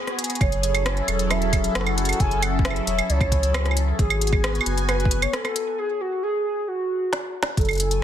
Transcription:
Already playing: analog synth pad B3 F#4 G#4
0.07 cross-stick, closed hi-hat
0.19 closed hi-hat
0.24 closed hi-hat
0.30 closed hi-hat
0.35 closed hi-hat
0.41 sub bass F#1, analog synth pad F#3 C#4 E4 A4, soft synth lead C#5, kick, closed hi-hat, claves
0.52 closed hi-hat
0.63 closed hi-hat
0.75 closed hi-hat, claves
0.86 cross-stick, closed hi-hat
0.97 closed hi-hat
1.08 sub bass E1, closed hi-hat, claves
1.19 closed hi-hat
1.31 soft synth lead E5, cross-stick, closed hi-hat, claves
1.42 closed hi-hat
1.53 kick, closed hi-hat, claves
1.64 closed hi-hat
1.75 sub bass F#1, soft synth lead F#5, cross-stick, closed hi-hat
1.81 cross-stick
1.87 closed hi-hat, claves
1.98 closed hi-hat
2.05 closed hi-hat
2.09 closed hi-hat, claves
2.13 closed hi-hat
2.20 sub bass F#1, soft synth lead G#5, kick, closed hi-hat
2.31 closed hi-hat
2.42 soft synth lead F#5, closed hi-hat, claves
2.59 kick
2.65 soft synth lead E5, cross-stick, closed hi-hat
2.71 claves
2.76 closed hi-hat
2.87 sub bass E1, closed hi-hat
2.99 closed hi-hat, claves
3.09 sub bass C#2, soft synth lead C#5, closed hi-hat
3.21 kick, closed hi-hat, claves
3.32 kick, closed hi-hat
3.43 closed hi-hat
3.54 cross-stick, closed hi-hat, claves
3.66 cross-stick, closed hi-hat
3.71 claves
3.77 closed hi-hat
3.99 sub bass G#1, analog synth pad B3 F#4 G#5, soft synth lead G#4, kick, closed hi-hat
4.10 closed hi-hat, claves
4.21 closed hi-hat
4.27 closed hi-hat
4.33 kick, claves
4.44 cross-stick, closed hi-hat
4.55 closed hi-hat
4.61 claves
4.66 sub bass F#1, closed hi-hat
4.78 closed hi-hat
4.89 soft synth lead B4, cross-stick, closed hi-hat, claves
5.00 closed hi-hat
5.05 kick
5.11 closed hi-hat
5.22 soft synth lead C#5, closed hi-hat, claves
5.33 soft synth lead A4, cross-stick, closed hi-hat
5.45 cross-stick, closed hi-hat, claves
5.56 closed hi-hat
5.78 soft synth lead G#4
6.01 soft synth lead F#4
6.23 soft synth lead G#4
6.68 soft synth lead F#4
7.13 snare
7.43 snare
7.57 sub bass F#1, analog synth pad F#3 C#4 E4 A4 G#5, soft synth lead A4, kick, closed hi-hat
7.61 closed hi-hat
7.65 closed hi-hat
7.69 closed hi-hat, claves
7.71 closed hi-hat
7.73 closed hi-hat
7.75 closed hi-hat
7.78 closed hi-hat
7.80 closed hi-hat
7.91 closed hi-hat

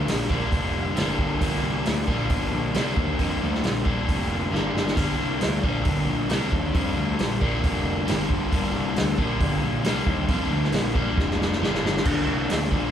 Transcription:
Already playing: overdriven electric guitar G2 D3 G3 A#3 D4
0.06 picked electric bass A#1, snare, open hi-hat
0.29 overdriven electric guitar G2 D3 G3 A#3 D4, kick
0.52 picked electric bass F1, kick, open hi-hat
0.95 picked electric bass G1, overdriven electric guitar G2 D3 G3 A#3 D4, snare, open hi-hat
1.18 picked electric bass G1, kick
1.39 picked electric bass G1, overdriven electric guitar G2 D3 G3 A#3 D4, kick, open hi-hat
1.62 picked electric bass C2
1.85 picked electric bass D2, snare, open hi-hat
2.07 picked electric bass A#1, overdriven electric guitar G2 D3 G3 A#3 D4, kick
2.30 picked electric bass G1, kick, open hi-hat
2.52 picked electric bass A#1
2.73 picked electric bass C2, overdriven electric guitar G2 D3 G3 A#3 D4, snare, open hi-hat
2.97 picked electric bass D#2, kick
3.18 picked electric bass F2, overdriven electric guitar G2 D3 G3 A#3 D4, kick, open hi-hat
3.41 picked electric bass D2
3.55 snare
3.63 picked electric bass A#1, snare, open hi-hat
3.85 overdriven electric guitar G2 D3 G3 A#3 D4, kick
4.08 picked electric bass F1, kick, open hi-hat
4.52 picked electric bass G1, overdriven electric guitar G2 D3 G3 A#3 D4, snare
4.75 picked electric bass G1, snare
4.87 snare
4.96 picked electric bass G1, overdriven electric guitar G2 D3 G3 A#3 D4, kick, open hi-hat, splash
5.18 picked electric bass C2
5.41 picked electric bass D2, snare, open hi-hat
5.63 picked electric bass A#1, overdriven electric guitar G2 D3 G3 A#3 D4, kick
5.85 picked electric bass G1, kick, open hi-hat
6.07 picked electric bass A#1
6.29 picked electric bass C2, overdriven electric guitar G2 D3 G3 A#3 D4, snare, open hi-hat
6.52 picked electric bass D#2, kick
6.73 picked electric bass F2, overdriven electric guitar G2 D3 G3 A#3 D4, kick, open hi-hat
6.97 picked electric bass D2
7.19 picked electric bass A#1, snare, open hi-hat
7.41 overdriven electric guitar G2 D3 G3 A#3 D4, kick
7.64 picked electric bass F1, kick, open hi-hat
8.06 picked electric bass G1, overdriven electric guitar G2 D3 G3 A#3 D4, snare, open hi-hat
8.30 picked electric bass G1, kick
8.51 picked electric bass G1, overdriven electric guitar G2 D3 G3 A#3 D4, kick, open hi-hat
8.74 picked electric bass C2
8.96 picked electric bass D2, snare, open hi-hat
9.18 picked electric bass A#1, overdriven electric guitar G2 D3 G3 A#3 D4, kick
9.40 picked electric bass G1, kick, open hi-hat
9.63 picked electric bass A#1
9.83 picked electric bass C2, overdriven electric guitar G2 D3 G3 A#3 D4, snare, open hi-hat
10.06 picked electric bass D#2, kick
10.28 picked electric bass F2, overdriven electric guitar G2 D3 G3 A#3 D4, kick, open hi-hat
10.51 picked electric bass D2
10.64 snare
10.72 picked electric bass A#1, snare, open hi-hat
10.94 overdriven electric guitar G2 D3 G3 A#3 D4, kick
11.17 picked electric bass F1, kick, snare
11.31 snare
11.42 snare
11.52 snare
11.60 picked electric bass G1, overdriven electric guitar G2 D3 G3 A#3 D4, snare
11.75 snare
11.83 picked electric bass G1, snare
11.97 snare
12.05 picked electric bass G1, overdriven electric guitar G2 D3 G3 A#3 D4, kick, open hi-hat, crash
12.27 picked electric bass C2
12.49 picked electric bass D2, snare, open hi-hat
12.71 picked electric bass A#1, overdriven electric guitar G2 D3 G3 A#3 D4, kick

